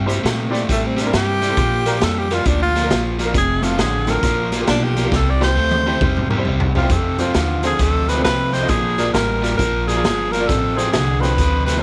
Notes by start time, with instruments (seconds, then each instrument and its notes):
Already playing: upright bass G2
0.06 overdriven electric guitar C3 G3, upright piano C4 E4 G4 C5, snare, closed hi-hat
0.23 upright bass A#2, overdriven electric guitar C3 A3, snare, closed hi-hat
0.50 overdriven electric guitar C3 A3, upright piano C4 E4 G4 D5
0.55 snare, closed hi-hat
0.68 upright bass A2, overdriven electric guitar C3 G3, tenor saxophone A3, kick, closed hi-hat
0.87 tenor saxophone C4
0.96 overdriven electric guitar C3 G3, upright piano G4 C5, snare, closed hi-hat
1.02 upright piano C4 E4 G4 A#4, tenor saxophone D4
1.13 upright bass G2, overdriven electric guitar C3 G3, tenor saxophone G4, snare, closed hi-hat
1.41 overdriven electric guitar C3 G3, upright piano G4 D5, snare, closed hi-hat
1.49 upright piano C4 E4 G4 A4
1.57 overdriven electric guitar A#2 F3, upright bass A#2, kick, closed hi-hat
1.86 overdriven electric guitar A#2 F3, upright piano A#3 D4 F4 A#4, snare, closed hi-hat
2.01 upright bass F2, overdriven electric guitar A#2 G3, tenor saxophone A4, snare, closed hi-hat
2.19 tenor saxophone G4
2.30 overdriven electric guitar A#2 G3, upright piano A#3 D4 F4 A#4, tenor saxophone F4, snare, closed hi-hat
2.45 upright bass D2, overdriven electric guitar A#2 F3, tenor saxophone D4, kick, closed hi-hat
2.63 tenor saxophone F4
2.75 overdriven electric guitar A#2 F3, upright piano F4 A#4, snare, closed hi-hat
2.84 upright piano A#3 D4 F4 A#4
2.90 upright bass A#1, overdriven electric guitar A#2 F3, snare, closed hi-hat
3.19 overdriven electric guitar A#2 F3, upright piano F4 A#4, snare, closed hi-hat
3.25 upright piano A#3 D4 F4 A#4
3.33 upright bass F1, overdriven electric guitar F2 C3, kick, closed hi-hat
3.38 tenor saxophone G#4
3.61 overdriven electric guitar F2 C3, upright piano A3 C4 F4 A4, tenor saxophone F4, snare, closed hi-hat
3.78 upright bass A1, overdriven electric guitar F2 D3, tenor saxophone G#4, snare, closed hi-hat
4.07 overdriven electric guitar F2 D3, upright piano A3 C4 F4 A4, tenor saxophone A#4, snare, closed hi-hat
4.23 upright bass A#1, overdriven electric guitar A#2 F3, kick, snare, closed hi-hat
4.52 overdriven electric guitar A#2 F3, upright piano F4 A#4, snare, closed hi-hat
4.61 upright piano A#3 D4 F4 G4
4.67 upright bass B1, overdriven electric guitar A#2 F3, tenor saxophone D4, snare, closed hi-hat
4.84 tenor saxophone G4
4.96 overdriven electric guitar A#2 F3, upright piano F4 A#4, snare, closed hi-hat
5.04 upright piano A#3 D4 F4 G4
5.12 upright bass C2, overdriven electric guitar C3 G3, tenor saxophone A4, kick, snare
5.31 tenor saxophone D5
5.40 overdriven electric guitar C3 G3, upright piano C4 E4 G4 C5, tenor saxophone C5, snare
5.56 upright bass D2, overdriven electric guitar C3 A3
5.71 high tom
5.86 overdriven electric guitar C3 A3, upright piano C4 E4 G4 C5
6.01 upright bass E2, overdriven electric guitar C3 G3, kick, mid tom
6.17 mid tom
6.29 overdriven electric guitar C3 G3, upright piano G4 A#4, mid tom
6.37 upright piano C4 E4 G4 C5
6.45 upright bass C2, overdriven electric guitar C3 G3, floor tom
6.60 floor tom
6.74 overdriven electric guitar C3 G3, upright piano G4 C5, floor tom
6.78 upright piano C4, tenor saxophone F4
6.82 upright piano E4 G4 C5
6.90 upright bass F2, overdriven electric guitar F2 C3, tenor saxophone A4, kick, closed hi-hat
7.18 overdriven electric guitar F2 C3, upright piano C4 F4 A4 C5, tenor saxophone F4, snare, closed hi-hat
7.34 upright bass D#2, overdriven electric guitar F2 D3, snare, closed hi-hat
7.63 overdriven electric guitar F2 D3, upright piano C4 F4 A4 C5, snare, closed hi-hat
7.67 tenor saxophone G#4
7.79 upright bass D2, overdriven electric guitar F2 C3, tenor saxophone A4, kick, closed hi-hat
8.08 overdriven electric guitar F2 C3, upright piano A4 C5, tenor saxophone B4, snare, closed hi-hat
8.18 upright piano C4 F4 A4 C5
8.24 upright bass C2, overdriven electric guitar F2 C3, tenor saxophone B4, snare, closed hi-hat
8.52 overdriven electric guitar F2 C3, upright piano A4 D#5, tenor saxophone C5, snare, closed hi-hat
8.61 upright piano C4 F4 A4 D#5
8.68 upright bass A#1, overdriven electric guitar A#2 F3, tenor saxophone G#4, kick, closed hi-hat
8.97 overdriven electric guitar A#2 F3, upright piano D4 F4 A#4 D5, snare, closed hi-hat
9.14 upright bass A1, overdriven electric guitar A#2 G3, tenor saxophone A#4, snare, closed hi-hat
9.42 overdriven electric guitar A#2 G3, upright piano D4 F4 A#4 D5, snare, closed hi-hat
9.58 upright bass A#1, overdriven electric guitar A#2 F3, tenor saxophone A#4, kick, closed hi-hat
9.87 overdriven electric guitar A#2 F3, tenor saxophone G#4, upright piano A#4 D5, snare, closed hi-hat
9.96 upright piano D4 F4 A#4 D5
10.04 upright bass G1, overdriven electric guitar A#2 F3, snare, closed hi-hat
10.31 overdriven electric guitar A#2 F3, upright piano A#4 F5, tenor saxophone A#4, snare, closed hi-hat
10.40 upright piano D4 F4 A#4 D5
10.48 upright bass A1, overdriven electric guitar F2 C3, tenor saxophone A4, kick, snare, closed hi-hat
10.76 overdriven electric guitar F2 C3, upright piano C4 F4 A4 C5, tenor saxophone G#4, snare, closed hi-hat
10.93 upright bass C2, overdriven electric guitar F2 D3, tenor saxophone G#4, snare, closed hi-hat
11.20 overdriven electric guitar F2, upright piano C4 F4 A4 C5, tenor saxophone B4, snare, closed hi-hat
11.25 overdriven electric guitar D3
11.38 upright bass D2, overdriven electric guitar F2 C3, kick, closed hi-hat
11.66 overdriven electric guitar F2 C3, upright piano A4 C5, tenor saxophone B4, snare, closed hi-hat
11.77 upright piano C4 F4 A4 C5